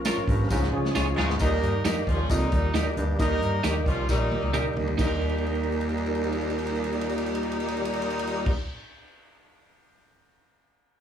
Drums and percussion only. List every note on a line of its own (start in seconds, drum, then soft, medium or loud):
0.05 snare loud
0.05 closed hi-hat loud
0.05 tambourine loud
0.17 snare soft
0.28 kick medium
0.28 closed hi-hat medium
0.50 kick medium
0.50 snare medium
0.50 tambourine medium
0.63 snare medium
0.85 snare medium
0.95 snare medium
0.95 tambourine medium
1.19 snare loud
1.30 snare medium
1.39 kick loud
1.39 closed hi-hat medium
1.39 tambourine medium
1.63 closed hi-hat medium
1.85 snare loud
1.85 closed hi-hat medium
1.85 tambourine medium
1.97 snare soft
2.07 kick medium
2.07 closed hi-hat medium
2.29 kick medium
2.29 closed hi-hat medium
2.29 tambourine medium
2.52 kick loud
2.52 closed hi-hat medium
2.74 snare loud
2.74 closed hi-hat medium
2.74 tambourine medium
2.97 closed hi-hat medium
3.19 kick loud
3.19 closed hi-hat medium
3.19 tambourine medium
3.42 closed hi-hat medium
3.64 snare loud
3.64 closed hi-hat medium
3.64 tambourine medium
3.86 kick medium
3.86 closed hi-hat medium
4.09 kick medium
4.09 snare medium
4.09 tambourine medium
4.32 high tom medium
4.43 high tom medium
4.54 mid tom medium
4.54 tambourine medium
4.77 floor tom medium
4.88 floor tom medium
4.99 kick loud
4.99 crash loud
4.99 tambourine medium
5.21 crash soft
5.29 ride soft
5.38 crash soft
5.47 ride soft
5.55 crash soft
5.63 ride soft
5.72 crash soft
5.81 ride medium
5.89 crash soft
5.98 ride medium
6.06 crash medium
6.15 ride medium
6.24 crash medium
6.32 ride medium
6.41 crash medium
6.50 ride medium
6.58 crash medium
6.67 ride medium
6.75 crash medium
6.84 ride medium
6.92 crash medium
7.01 ride medium
7.09 crash medium
7.18 ride medium
7.26 crash medium
7.35 ride medium
7.43 crash medium
7.52 ride medium
7.60 crash medium
7.68 ride medium
7.77 crash medium
7.85 ride medium
7.93 crash medium
8.02 ride medium
8.10 crash medium
8.19 ride medium
8.27 crash loud
8.46 kick loud
8.46 crash medium